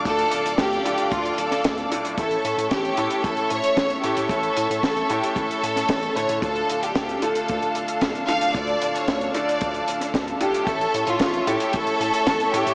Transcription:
<<
  \new Staff \with { instrumentName = "String section" } { \time 4/4 \key d \minor \tempo 4 = 113 << { <d'' f'' d'''>1 | <cis'' e'' cis'''>1~ | <cis'' e'' cis'''>1 | <d' f'' a''>1~ |
<d' f'' a''>1 | <cis'' e'' cis'''>1 | } \\ { a'1~ | a'1~ | a'1~ | a'1~ |
a'1 | a'1 | } >> }
  \new Staff \with { instrumentName = "Violin section" } { \time 4/4 \key d \minor a'4 g'4 f'8 a'4 r8 | a'4 g'4 a'8 cis''4 g'8 | a'4 a'8 g'8 a'4. cis''8 | a'8. g'8. a'4. r8 f''8 |
d''8. cis''8. d''4. r8 g'8 | a'8. f'8. g'8 a'4. g'8 | }
  \new Staff \with { instrumentName = "Grand piano" } { \time 4/4 \key d \minor <d a d' f' a'>4. <d a d' f' a'>2 <a, a d' f' a'>8 | <a, a cis' e' a'>4. <a, a cis' e' a'>2 <a, a cis' e' a'>8 | <a, a cis' e' a'>4. <a, a cis' e' a'>2 <d a cis' e' a'>8 | <d a d' f' a'>4. <d a d' f' a'>2 <d a d' f' a'>8 |
<d a d' f' a'>4. <d a d' f' a'>2 <a, a d' f' a'>8 | <a, a cis' a' e''>4. <a, a cis' e' a'>2 <a, a cis' e' a'>8 | }
  \new Staff \with { instrumentName = "Analog synth bass" } { \clef bass \time 4/4 \key d \minor d,8 d,,16 d,,16 d,8 d,,16 r16 d,8 d,,16 r16 d,8 d,,16 d,,16 | a,,8 a,16 a,16 a,,8 a,16 r16 a,,16 r16 a,16 r16 a,,16 r16 a,16 a,16 | a,,8 a,16 a,16 a,,8 a,16 r16 a,,16 r16 a,8 a,,8 a,16 a,16 | d,8 d,,16 d,,16 d,8 d,,16 r16 d,16 r16 d,,16 r16 d,16 r16 d,,16 d,,16 |
d,8 d,,16 d,,16 d,8 d,,16 r16 d,8 d,,16 r16 d,8 d,,16 d,,16 | a,,8 a,16 a,16 a,,8 a,16 r16 a,,16 r16 a,16 r16 a,,16 r16 a,16 a,16 | }
  \new DrumStaff \with { instrumentName = "Drums" } \drummode { \time 4/4 <hh bd>16 hh16 hh16 hh16 <hh bd sn>16 hh16 hh16 hh16 <hh bd>16 hh16 hh16 <hh sn>16 <hh bd sn>16 hh16 hh16 hh16 | <hh bd>16 hh16 hh16 hh16 <hh bd sn>16 hh16 hh16 hh16 <hh bd>16 hh16 hh16 hh16 <hh bd sn>16 hh16 hh16 hh16 | <hh bd>16 hh16 hh16 hh16 <hh bd sn>16 hh16 hh16 hh16 <hh bd>16 hh16 hh16 <hh sn>16 <hh bd sn>16 hh16 hh16 hh16 | <hh bd>16 hh16 hh16 hh16 <hh bd sn>16 hh16 hh16 hh16 <hh bd>16 hh16 hh16 hh16 <hh bd sn>16 hh16 hh16 hh16 |
<hh bd>16 hh16 hh16 hh16 <hh bd sn>16 hh16 hh16 hh16 <hh bd>16 hh16 hh16 <hh sn>16 <hh bd sn>16 hh16 hh16 hh16 | <hh bd>16 hh16 hh16 hh16 <hh bd sn>16 hh16 hh16 hh16 <hh bd>16 hh16 hh16 hh16 <hh bd sn>16 hh16 hh16 hh16 | }
>>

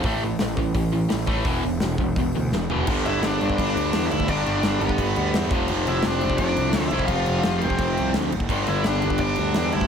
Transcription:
<<
  \new Staff \with { instrumentName = "Overdriven electric guitar" } { \time 4/4 \key g \lydian \tempo 4 = 170 r1 | r1 | r8 <e' e''>8 <d' d''>4 <d' d''>4. <e' e''>8 | <d' d''>4 <d' d''>8 <b b'>4. r4 |
r8 <e' e''>8 <d' d''>4 <d' d''>4. <e' e''>8 | <f' f''>4 <f' f''>8 <c' c''>4. r4 | r8 <e' e''>8 <d' d''>4 <d' d''>4. <e' e''>8 | }
  \new Staff \with { instrumentName = "Distorted electric guitar" } { \clef bass \time 4/4 \key g \lydian <a, e a>8 <a, e>8 <a, e>8 <a, e>8 <a, e>8 <a, e>8 <a, e>8 <a, e a>8 | <e, b, e>8 <e, b,>8 <e, b,>8 <e, b,>8 <e, b,>8 <e, b,>8 <e, b,>8 <e, b, e>8 | <g, d g>1 | <g, d g>2.~ <g, d g>8 <f, c f>8~ |
<f, c f>2.~ <f, c f>8 <f, c f>8~ | <f, c f>2.~ <f, c f>8 r8 | <g, d g>1 | }
  \new Staff \with { instrumentName = "Picked electric bass" } { \clef bass \time 4/4 \key g \lydian a,,4 a,,8 a,,8 a,,4 a,,4 | e,,8 e,,8 e,,8 e,,8 e,,8 d,8 e,,8 e,,8 | g,,8 g,,8 g,,8 g,,8 g,,8 d,8 e,8 d,8 | g,,8 g,,8 g,,8 g,,8 g,,8 d,8 e,8 f,,8 |
f,,8 f,,8 f,,8 f,,8 f,,8 c,8 d,8 c,8 | f,,8 f,,8 f,,8 f,,8 f,,8 c,8 d,8 fis,,8 | g,,8 g,,8 g,,8 g,,8 g,,8 d,8 e,8 d,8 | }
  \new DrumStaff \with { instrumentName = "Drums" } \drummode { \time 4/4 <hho bd>4 <hho sn>8 bd8 <hho bd>4 <hho sn>8 bd8 | <hho bd>4 <hho sn>8 bd8 <hho bd>4 sn8 tomfh8 | <cymc bd>8 cymc8 <cymc sn>8 cymc16 bd16 <cymc bd>8 cymc8 <cymc sn>8 cymc16 bd16 | <cymc bd>8 cymc8 <cymc sn>8 cymc16 bd16 <cymc bd>8 cymc8 <cymc sn>8 <cymc bd>8 |
cymc8 cymc8 <cymc sn>8 cymc16 bd16 <cymc bd>8 cymc8 <cymc sn>8 cymc16 bd16 | <cymc bd>8 cymc8 <cymc sn>8 cymc16 bd16 <cymc bd>8 cymc8 <cymc sn>8 cymc16 bd16 | <cymc bd>8 cymc8 <cymc sn>8 cymc16 bd16 <cymc bd>8 cymc8 <cymc sn>8 cymc16 bd16 | }
>>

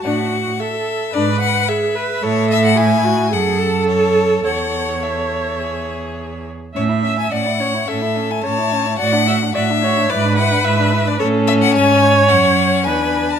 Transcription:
<<
  \new Staff \with { instrumentName = "Violin" } { \time 4/4 \key a \major \tempo 4 = 108 fis''4 e''4 d''8 fis''8 e''4 | cis''8 e''16 fis''16 gis''4 fis''4 cis''4 | fis''4 e''2~ e''8 r8 | cis''8 e''16 gis''16 fis''4 e''8. gis''16 a''4 |
fis''4 e''4 d''8 fis''8 e''8. d''16 | cis''8 e''16 fis''16 gis''4 fis''4 gis''8. a''16 | }
  \new Staff \with { instrumentName = "Viola" } { \time 4/4 \key a \major fis'4 a'4 b'4 gis'8 b'8 | a'4 e'8 fis'8 gis'8 a'4. | cis''2.~ cis''8 r8 | e''4 d''8 cis''8 a'4 cis''4 |
d''8 e''8 d''8 cis''8 b'2 | a'4 cis''2 b'4 | }
  \new Staff \with { instrumentName = "Violin" } { \time 4/4 \key a \major d'8 r4. d'8 r4. | e'2 a'4 a'4 | a'4 a'4 gis'4.~ gis'16 r16 | cis'16 e'16 cis'16 e'16 cis'16 e'16 cis'16 e'16 cis'16 e'16 cis'16 e'16 cis'16 e'16 cis'16 e'16 |
fis'16 d'16 fis'16 d'16 fis'16 d'16 fis'16 d'16 e'16 d'16 e'16 d'16 e'16 d'16 e'16 d'16 | cis'2 cis'4 d'4 | }
  \new Staff \with { instrumentName = "Cello" } { \clef bass \time 4/4 \key a \major a,4 r4 gis,4 r4 | a,2 fis,2 | e,2.~ e,8 r8 | a,4 a,4 a,4 a,4 |
a,4 a,4 gis,4 gis,4 | a,4 gis,4 fis,4 e,4 | }
>>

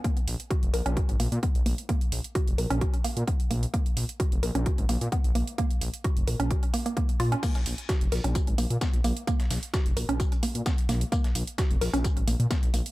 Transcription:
<<
  \new Staff \with { instrumentName = "Synth arpeggio sound" } { \time 4/4 \key bes \phrygian \tempo 4 = 130 bes16 r8. ges'16 r16 bes'16 des'16 ges'16 r16 bes16 r16 ces'16 r16 bes16 r16 | bes16 r8. ges'16 r16 bes'16 des'16 ges'16 r16 bes16 r16 ces'16 r16 bes16 r16 | bes16 r8. ges'16 r16 bes'16 des'16 ges'16 r16 bes16 r16 ces'16 r16 bes16 r16 | bes16 r8. ges'16 r16 bes'16 des'16 ges'16 r16 bes16 bes16 bes16 r16 f'16 des'16 |
bes16 r8. ges'16 r16 bes'16 des'16 ges'16 r16 bes16 r16 ces'16 r16 bes16 r16 | bes16 r8. ges'16 r16 bes'16 des'16 ges'16 r16 bes16 r16 ces'16 r16 bes16 r16 | bes16 r8. ges'16 r16 bes'16 des'16 ges'16 r16 bes16 r16 ces'16 r16 bes16 r16 | }
  \new Staff \with { instrumentName = "Detuned saw bass" } { \clef bass \time 4/4 \key bes \phrygian r8 bes,,16 r8 f,,16 bes,,16 bes,,16 r16 aes,,16 bes,,16 bes,16 r16 bes,,16 bes,,16 r16 | r8 bes,,16 r8 f,,16 bes,,16 bes,,16 r8. bes,16 r8 bes,,16 r16 | r8 bes,,16 r8 f,,16 bes,,16 bes,,16 r16 aes,,16 bes,,16 bes,16 r16 bes,,16 bes,,16 r16 | r8 bes,,16 r8 f,,16 bes,,16 bes,,16 r4. bes,16 r16 |
r8 bes,,16 r8 f,,16 bes,,16 bes,,16 r16 aes,,16 bes,,16 bes,16 r16 bes,,16 bes,,16 r16 | r8 bes,,16 r8 f,,16 bes,,16 bes,,16 r8. bes,16 r8 bes,,16 r16 | r8 bes,,16 r8 f,,16 bes,,16 bes,,16 r16 aes,,16 bes,,16 bes,16 r16 bes,,16 bes,,16 r16 | }
  \new DrumStaff \with { instrumentName = "Drums" } \drummode { \time 4/4 <hh bd>16 hh16 hho16 hh16 <hh bd>16 hh16 hho16 hh16 <hh bd>16 hh16 hho16 hh16 <hh bd>16 hh16 hho16 hh16 | <hh bd>16 hh16 hho16 hh16 <hh bd>16 hh16 hho16 hh16 <hh bd>16 hh16 hho16 hh16 <hh bd>16 hh16 hho16 hh16 | <hh bd>16 hh16 hho16 hh16 <hh bd>16 hh16 hho16 hh16 <hh bd>16 hh16 hho16 hh16 <hh bd>16 hh16 hho16 hh16 | <hh bd>16 hh16 hho16 hh16 <hh bd>16 hh16 hho16 hh16 <hh bd>16 hh16 hho16 hh16 <hh bd>16 hh16 hho16 hh16 |
<cymc hh bd tamb>16 <hh sn>16 <hho tamb>16 hh16 <hh bd sn tamb>16 hh16 hho16 hh16 <hh bd tamb>16 hh16 <hho tamb>16 hh16 <hh bd sn tamb>16 hh16 <hho tamb>16 hh16 | <hh bd tamb>16 <hh sn>16 <hho sn tamb>16 hh16 <hh bd sn tamb>16 hh16 <hho tamb>16 hh16 <hh bd tamb>16 hh16 <hho tamb>16 hh16 <hh bd sn tamb>16 hh16 <hho sn tamb>16 hh16 | <hh bd tamb>16 <hh sn>16 <hho tamb>16 hh16 <hh bd sn tamb>16 hh16 hho16 hh16 <hh bd tamb>16 hh16 <hho tamb>16 hh16 <hh bd sn tamb>16 hh16 <hho tamb>16 hh16 | }
>>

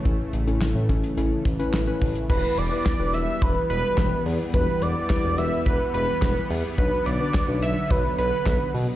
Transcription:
<<
  \new Staff \with { instrumentName = "Analog synth lead" } { \time 4/4 \key e \dorian \tempo 4 = 107 r1 | b'8 d''4 e''8 b'8 b'4 r8 | b'8 d''4 e''8 b'8 b'4 r8 | b'8 d''4 e''8 b'8 b'4 r8 | }
  \new Staff \with { instrumentName = "Synth pluck" } { \time 4/4 \key e \dorian <cis' e' a'>8 r16 <cis' e' a'>8 r16 <cis' e' a'>16 r16 <cis' e' a'>8 r16 <cis' e' b'>16 r16 <cis' e' b'>8 r16 | <e' g' b'>8 r16 <e' g' b'>16 r16 <e' g' b'>4. r4 r16 | <e' g' b'>8. r16 <e' g' b'>16 r16 <e' g' b'>4. r4 | <d' fis' b'>8 r16 <d' fis' b'>16 r16 <d' fis' b'>4. r4 r16 | }
  \new Staff \with { instrumentName = "Analog synth pad" } { \clef bass \time 4/4 \key e \dorian << { <e a>1 | <e g>1~ | <e g>1 | <d fis>1 | } \\ { cis1 | b1~ | b1~ | b1 | } >> }
  \new Staff \with { instrumentName = "Analog synth bass" } { \clef bass \time 4/4 \key e \dorian a,,16 r16 a,,16 a,,16 a,,16 a,16 a,,16 r16 a,,16 r16 a,,16 r16 a,,16 r16 a,,16 r16 | e,,16 r16 e,,16 r8 e,,16 e,,16 r16 e,,16 r16 e,,16 r16 e,,16 r16 e,16 r16 | e,,16 r16 e,,16 r8 e,,16 e,,16 r16 e,,16 r16 e,,16 r16 e,,16 r16 e,16 r16 | b,,16 r16 b,,16 r8 b,,16 b,,16 r16 b,,16 r16 b,,16 r16 b,,16 r16 b,16 r16 | }
  \new DrumStaff \with { instrumentName = "Drums" } \drummode { \time 4/4 <hh bd>8 hh16 hh16 <hc hh sn>8 <hh bd>16 hh16 hh8 <hh bd>16 hh16 <hc hh sn>8 <hho bd>16 hh16 | <cymc bd>8 hh8 <hc hh bd sn>8 hh8 <hh bd>8 hh8 <hc hh bd sn>8 hho8 | <hh bd>8 hh8 <hc hh bd sn>8 hh8 <hh bd>8 hh8 <hc hh bd sn>8 hho8 | <hh bd>8 hh8 <hc hh bd sn>8 hh8 <hh bd>8 hh8 <hc hh bd sn>8 hho8 | }
>>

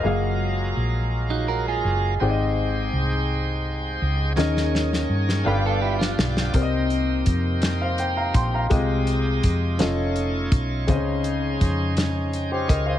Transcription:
<<
  \new Staff \with { instrumentName = "Grand piano" } { \time 6/8 \key aes \major \tempo 4. = 55 << { <bes' ees''>16 r2 r8. | r2. | r2. | r4. r16 <c'' f''>16 <c'' g''>16 <f'' bes''>16 <g'' c'''>16 <f'' bes''>16~ |
<f'' bes''>16 r2 r8. | r2 r16 <g' c''>16 <bes' ees''>16 <c'' f''>16 | } \\ { <ges bes aes' f''>2. | <c' g' aes' d'' ees''>2. | <des' aes' bes' ees''>4. <d' g' a' b' f''>4. | <c' g' bes' d'' ees''>2. |
<aes f' g' ees''>4. <cis' f' a' ees''>4. | <c' des' aes' c'' ees''>2. | } >> }
  \new Staff \with { instrumentName = "Grand piano" } { \clef bass \time 6/8 \key aes \major r2. | aes,4. r4. | ees4. g,4. | c4. r4. |
c4. r4. | des4. r4. | }
  \new Staff \with { instrumentName = "Tonewheel organ" } { \time 6/8 \key aes \major << { aes'16 r2 r8. | r2. | r2. | r2. |
r2. | r2 <ees'' g''>16 <des'' f''>8 <c'' ees''>16 | } \\ { <ges aes f' bes'>2. | <aes ees' c'' g''>2. | <bes ees' aes' des''>4. <b f' g' d''>4. | <bes ees' g' c''>2. |
<aes f' g' ees''>4. <a ees' f' cis''>4. | <aes des' ees' c''>2. | } >> }
  \new Staff \with { instrumentName = "Clean electric guitar" } { \time 6/8 \key aes \major r4. r16 <ees' ges'>16 <ges' bes'>16 <f' aes'>8. | r2. | r4. <g' b'>16 <f' a'>16 <fes' g'>16 <d' f'>8. | r2. |
r2. | r2. | }
  \new Staff \with { instrumentName = "Fingered electric bass" } { \clef bass \time 6/8 \key aes \major ges,,4 bes,,4. ges,,8 | aes,,4 c,4. des,8 | ees,4 g,8 g,,4 b,,8 | c,4 f,4. bes,,8 |
c,4 f,8 f,,4 ces,8 | des,4 f,4. des,8 | }
  \new DrumStaff \with { instrumentName = "Drums" } \drummode { \time 6/8 r4. r4. | r4. r4. | sn16 sn16 sn16 sn8 sn16 r8. sn16 sn16 sn16 | <hh bd>8 hh8 <hh bd>8 <hh sn>8 hh8 <hh bd>8 |
<hh bd>8 hh8 <hh bd>8 <hh sn>8 hh8 <hh bd>8 | <hh bd>8 hh8 <hh bd>8 <hh sn>8 hh8 <hh bd>8 | }
>>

